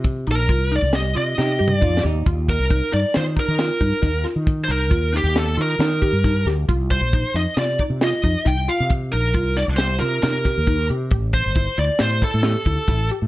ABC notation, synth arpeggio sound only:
X:1
M:5/4
L:1/8
Q:1/4=136
K:Eblyd
V:1 name="Synth arpeggio sound"
F E F E G F E G E G | F2 E E F E F E E F- | F E F E G F E G E G | F2 E E F E F E E F- |
F E F E G F E G E G | G2 =E E G E G E E G |]